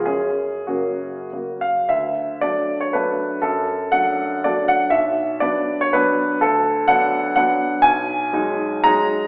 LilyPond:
<<
  \new Staff \with { instrumentName = "Grand piano" } { \time 3/4 \key fis \major \tempo 4 = 120 <cis' gis'>4 <cis' fis'>4. eis''8 | \key d \major e''4 d''8. cis''16 b'4 | a'4 fis''4 d''8 fis''8 | e''4 d''8. cis''16 b'4 |
a'4 fis''4 fis''4 | \key gis \dorian gis''2 ais''4 | }
  \new Staff \with { instrumentName = "Grand piano" } { \clef bass \time 3/4 \key fis \major fis,4 <cis fis ais>4 <cis fis ais>4 | \key d \major d,4 <fis a d'>4 <fis a d'>4 | fis,4 <fis a d'>4 <fis a d'>4 | b,,4 <fis b d'>4 <fis b d'>4 |
d,4 <fis b d'>4 <fis b d'>4 | \key gis \dorian b,,4 <fis gis dis'>4 <fis gis dis'>4 | }
>>